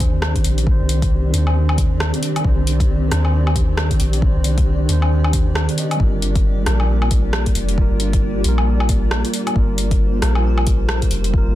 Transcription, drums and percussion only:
0.00 kick, closed hi-hat
0.22 cross-stick
0.36 kick, closed hi-hat
0.44 closed hi-hat
0.58 closed hi-hat
0.67 kick
0.89 closed hi-hat
1.02 kick, closed hi-hat
1.34 closed hi-hat
1.47 low woodblock
1.69 low woodblock
1.78 kick, closed hi-hat
2.00 cross-stick
2.14 closed hi-hat
2.23 closed hi-hat
2.36 closed hi-hat, low woodblock
2.44 kick
2.67 closed hi-hat
2.80 kick, closed hi-hat
3.12 cross-stick, closed hi-hat
3.25 low woodblock
3.47 low woodblock
3.56 kick, closed hi-hat
3.77 cross-stick
3.91 kick, closed hi-hat
4.00 closed hi-hat
4.13 closed hi-hat
4.22 kick
4.44 closed hi-hat
4.58 kick, closed hi-hat
4.89 closed hi-hat
5.02 low woodblock
5.24 low woodblock
5.33 kick, closed hi-hat
5.55 cross-stick
5.69 closed hi-hat
5.78 closed hi-hat
5.91 closed hi-hat, low woodblock
6.00 kick
6.22 closed hi-hat
6.36 kick, closed hi-hat
6.66 cross-stick, closed hi-hat
6.80 low woodblock
7.02 low woodblock
7.11 kick, closed hi-hat
7.33 cross-stick
7.46 kick, closed hi-hat
7.55 closed hi-hat
7.69 closed hi-hat
7.78 kick
8.00 closed hi-hat
8.13 kick, closed hi-hat
8.44 closed hi-hat
8.58 low woodblock
8.80 low woodblock
8.89 kick, closed hi-hat
9.11 cross-stick
9.25 closed hi-hat
9.34 closed hi-hat
9.47 closed hi-hat, low woodblock
9.56 kick
9.78 closed hi-hat
9.91 kick, closed hi-hat
10.22 cross-stick, closed hi-hat
10.35 low woodblock
10.58 low woodblock
10.67 kick, closed hi-hat
10.89 cross-stick
11.02 kick, closed hi-hat
11.11 closed hi-hat
11.24 closed hi-hat
11.34 kick

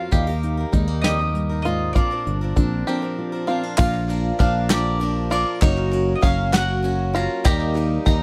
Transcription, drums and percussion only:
0.12 kick, closed hi-hat
0.43 closed hi-hat
0.73 kick, closed hi-hat
1.04 snare, closed hi-hat
1.35 closed hi-hat
1.65 closed hi-hat
1.96 kick, closed hi-hat
2.27 closed hi-hat
2.57 kick, closed hi-hat
3.78 kick, clap, crash
3.94 clap
4.09 clap, ride
4.40 kick, ride
4.70 snare, clap, ride
5.01 ride
5.32 ride
5.62 kick, clap, ride
5.77 clap
5.92 clap, ride
6.23 kick, ride
6.53 snare, clap, ride
6.84 ride
7.15 ride
7.46 kick, clap, ride
7.60 clap
7.76 clap, ride
8.07 kick, ride

